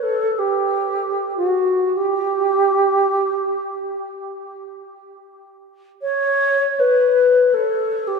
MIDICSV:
0, 0, Header, 1, 2, 480
1, 0, Start_track
1, 0, Tempo, 500000
1, 7867, End_track
2, 0, Start_track
2, 0, Title_t, "Alto flute"
2, 0, Program_c, 0, 73
2, 23, Note_on_c, 0, 69, 72
2, 368, Note_on_c, 0, 67, 72
2, 382, Note_off_c, 0, 69, 0
2, 1303, Note_off_c, 0, 67, 0
2, 1308, Note_on_c, 0, 66, 64
2, 1883, Note_on_c, 0, 67, 70
2, 1897, Note_off_c, 0, 66, 0
2, 3818, Note_off_c, 0, 67, 0
2, 5776, Note_on_c, 0, 73, 85
2, 6518, Note_on_c, 0, 71, 77
2, 6533, Note_off_c, 0, 73, 0
2, 7233, Note_on_c, 0, 69, 69
2, 7247, Note_off_c, 0, 71, 0
2, 7746, Note_on_c, 0, 67, 69
2, 7761, Note_off_c, 0, 69, 0
2, 7867, Note_off_c, 0, 67, 0
2, 7867, End_track
0, 0, End_of_file